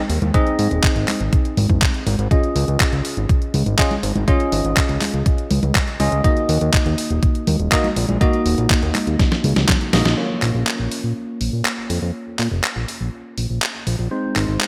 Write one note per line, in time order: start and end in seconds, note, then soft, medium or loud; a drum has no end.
0.10 0.19 D#2 medium
0.10 open hi-hat loud
0.22 0.31 D#2 medium
0.22 closed hi-hat soft
0.22 high conga medium
0.34 2.03 C4 loud
0.34 2.03 D#4 medium
0.34 2.03 G#4 medium
0.34 2.03 D#5 loud
0.34 kick loud
0.34 closed hi-hat medium
0.47 closed hi-hat soft
0.59 0.68 G#2 loud
0.59 open hi-hat loud
0.71 0.81 D#1 medium
0.71 closed hi-hat soft
0.83 kick loud
0.83 clap loud
0.83 closed hi-hat medium
0.96 1.05 G#1 medium
0.96 closed hi-hat soft
1.08 clap medium
1.08 open hi-hat loud
1.08 high conga medium
1.20 1.30 G#1 medium
1.20 closed hi-hat soft
1.33 kick loud
1.33 closed hi-hat medium
1.45 closed hi-hat soft
1.57 1.67 G#1 loud
1.57 open hi-hat loud
1.57 high conga medium
1.70 1.79 F#1 medium
1.70 kick medium
1.70 high conga medium
1.82 kick loud
1.82 clap loud
1.82 closed hi-hat medium
1.94 closed hi-hat soft
2.07 2.16 G#1 medium
2.07 open hi-hat loud
2.07 high conga medium
2.19 2.28 G#1 medium
2.19 closed hi-hat soft
2.31 3.76 C#4 medium
2.31 3.76 F4 medium
2.31 3.76 G#4 medium
2.31 3.76 D#5 medium
2.31 kick loud
2.31 closed hi-hat medium
2.43 closed hi-hat soft
2.56 2.65 C#2 loud
2.56 open hi-hat loud
2.68 2.77 C#2 medium
2.68 closed hi-hat soft
2.80 kick loud
2.80 clap loud
2.80 closed hi-hat medium
2.93 3.02 C#2 medium
2.93 closed hi-hat soft
3.05 open hi-hat loud
3.17 3.26 G#1 medium
3.17 closed hi-hat soft
3.29 kick loud
3.29 closed hi-hat medium
3.42 closed hi-hat soft
3.54 3.63 C#2 loud
3.54 open hi-hat loud
3.54 high conga medium
3.66 3.76 G#1 medium
3.66 closed hi-hat soft
3.79 3.94 C#4 medium
3.79 3.94 F4 medium
3.79 3.94 G#4 medium
3.79 3.94 D#5 loud
3.79 kick loud
3.79 clap loud
3.79 closed hi-hat medium
3.91 closed hi-hat soft
3.91 high conga medium
4.03 4.13 G#1 medium
4.03 open hi-hat loud
4.16 4.25 G#1 medium
4.16 closed hi-hat soft
4.16 high conga medium
4.28 5.97 C#4 medium
4.28 5.97 F4 medium
4.28 5.97 G#4 medium
4.28 5.97 D#5 loud
4.28 kick loud
4.28 closed hi-hat loud
4.40 closed hi-hat soft
4.52 4.62 G#1 medium
4.52 open hi-hat loud
4.65 4.74 G#1 medium
4.65 closed hi-hat soft
4.77 kick loud
4.77 clap loud
4.77 closed hi-hat medium
4.89 4.99 C#2 medium
4.89 closed hi-hat soft
5.01 clap medium
5.01 open hi-hat loud
5.01 high conga medium
5.14 5.23 C#2 medium
5.14 closed hi-hat soft
5.26 kick loud
5.26 closed hi-hat loud
5.38 closed hi-hat soft
5.51 5.60 C#2 loud
5.51 open hi-hat loud
5.51 high conga medium
5.63 5.72 C#2 medium
5.63 closed hi-hat soft
5.63 high conga medium
5.75 kick loud
5.75 clap loud
5.75 closed hi-hat loud
5.88 closed hi-hat soft
6.00 6.09 C#2 medium
6.00 6.22 C#4 medium
6.00 6.22 F4 medium
6.00 6.22 G#4 medium
6.00 6.22 D#5 medium
6.00 open hi-hat loud
6.00 high conga medium
6.12 6.21 C#2 medium
6.12 closed hi-hat soft
6.24 7.69 A#3 medium
6.24 7.69 D#4 medium
6.24 7.69 F#4 medium
6.24 7.69 D#5 medium
6.24 kick loud
6.24 closed hi-hat loud
6.37 closed hi-hat soft
6.49 6.58 D#2 medium
6.49 open hi-hat loud
6.61 6.71 D#2 medium
6.61 closed hi-hat soft
6.74 kick loud
6.74 clap loud
6.74 closed hi-hat loud
6.86 6.95 D#2 medium
6.86 closed hi-hat soft
6.98 open hi-hat loud
7.10 7.20 D#1 medium
7.10 closed hi-hat soft
7.23 kick loud
7.23 closed hi-hat loud
7.35 closed hi-hat soft
7.47 7.57 D#2 loud
7.47 open hi-hat loud
7.47 high conga medium
7.60 7.69 D#1 medium
7.60 closed hi-hat soft
7.72 7.88 A#3 medium
7.72 7.88 D#4 medium
7.72 7.88 F#4 medium
7.72 7.88 D#5 loud
7.72 kick loud
7.72 clap loud
7.72 closed hi-hat loud
7.84 closed hi-hat soft
7.84 high conga medium
7.96 8.06 A#1 medium
7.96 open hi-hat loud
8.09 8.18 A#1 medium
8.09 closed hi-hat soft
8.09 high conga medium
8.21 9.90 A#3 loud
8.21 9.90 D#4 medium
8.21 9.90 F#4 medium
8.21 9.90 D#5 loud
8.21 kick loud
8.21 closed hi-hat loud
8.33 closed hi-hat soft
8.46 8.55 D#1 loud
8.46 open hi-hat loud
8.58 8.67 A#1 medium
8.58 closed hi-hat soft
8.70 kick loud
8.70 clap loud
8.70 closed hi-hat loud
8.83 8.92 D#2 medium
8.83 closed hi-hat soft
8.95 clap medium
8.95 open hi-hat loud
8.95 high conga medium
9.07 9.17 D#2 medium
9.07 closed hi-hat soft
9.19 kick loud
9.19 snare medium
9.19 closed hi-hat loud
9.32 snare medium
9.32 closed hi-hat soft
9.44 9.53 C#2 loud
9.44 open hi-hat loud
9.44 high conga medium
9.56 9.66 C#2 medium
9.56 snare medium
9.56 closed hi-hat soft
9.56 high conga medium
9.69 kick loud
9.69 snare medium
9.69 clap loud
9.69 closed hi-hat loud
9.81 closed hi-hat soft
9.93 10.03 A#1 loud
9.93 10.15 A#3 medium
9.93 10.15 D#4 medium
9.93 10.15 F#4 medium
9.93 10.15 D#5 medium
9.93 snare loud
9.93 open hi-hat loud
9.93 high conga medium
10.05 10.15 A#1 medium
10.05 snare medium
10.05 closed hi-hat soft
10.18 14.08 A#3 medium
10.18 14.08 C#4 medium
10.18 14.08 F4 medium
10.18 14.08 C#5 medium
10.42 10.52 A#1 medium
10.42 clap medium
10.42 open hi-hat loud
10.55 10.64 A#1 medium
10.67 clap loud
10.79 10.89 A#1 medium
10.91 open hi-hat loud
11.04 11.13 A#2 medium
11.41 11.50 A#1 medium
11.41 open hi-hat loud
11.53 11.62 A#2 medium
11.65 clap loud
11.90 11.99 F2 medium
11.90 open hi-hat loud
12.02 12.12 F2 medium
12.39 12.48 A#2 medium
12.39 clap medium
12.39 open hi-hat medium
12.52 12.61 F1 medium
12.64 clap loud
12.76 12.85 A#1 medium
12.88 open hi-hat loud
13.01 13.10 A#1 medium
13.38 13.47 A#1 medium
13.38 open hi-hat medium
13.50 13.59 A#1 medium
13.62 clap loud
13.87 13.96 A#1 medium
13.87 open hi-hat medium
13.99 14.08 A#1 medium
14.11 14.67 G#3 medium
14.11 14.67 C4 medium
14.11 14.67 D#4 medium
14.11 14.67 C5 medium
14.36 14.45 G#1 medium
14.36 clap medium
14.36 open hi-hat medium
14.48 14.58 G#1 medium
14.61 clap loud